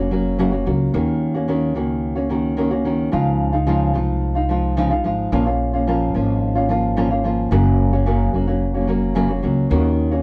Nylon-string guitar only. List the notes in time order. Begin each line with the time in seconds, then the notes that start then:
Already playing: C#4 F#4
0.00 A#3
0.11 F#3 A#3 C#4 F#4
0.38 F#2 C#3 F#3 A#3 C#4 F#4
0.52 F#3 A#3 C#4 F#4
0.65 F#3 A#3 C#4 F#4
0.93 D#3 A#3 C#4 F#4
1.34 A#3 C#4 F#4
1.48 D#3 A#3 C#4 F#4
1.75 D#3 A#3 C#4 F#4
2.16 A#3 C#4 F#4
2.30 D#3 A#3 C#4 F#4
2.57 D#3 A#3 C#4 F#4
2.71 A#3 C#4 F#4
2.85 D#3 A#3 C#4 F#4
3.12 C#3 F3 G#3 D#4 F4
3.53 G#3 D#4 F4
3.67 C#3 F3 G#3 D#4 F4
3.94 F3 G#3 D#4 F4
4.35 G#3 D#4 F4
4.49 F3 G#3 D#4 F4
4.77 C#3 F3 G#3 D#4 F4
4.90 G#3 D#4 F4
5.04 F3 G#3 D#4 F4
5.32 A#2 F3 A#3 C#4 F4
5.46 A#3 C#4 F4
5.73 A#3 C#4 F4
5.87 A#2 F3 A#3 C#4 F4
6.15 F3 A#3 C#4 F4
6.55 A#3 C#4 F4
6.69 F3 A#3 C#4 F4
6.97 A#2 F3 A#3 C#4 F4
7.11 A#3 C#4 F4
7.24 F3 A#3 C#4 F4
7.51 F#2 C#3 F#3 A#3 C#4 F#4
7.93 F#3 A#3 C#4 F#4
8.06 F#2 C#3 F#3 A#3 C#4 F#4
8.34 F#3 A#3 C#4 F#4
8.47 F#3 A#3 C#4 F#4
8.74 F#3 A#3 C#4 F#4
8.87 F#3 A#3 C#4 F#4
9.15 F#2 C#3 F#3 A#3 C#4 F#4
9.28 F#3 A#3 C#4 F#4
9.42 F#3 A#3 C#4 F#4
9.70 D#3 A#3 C#4 F#4
10.11 A#3 C#4 F#4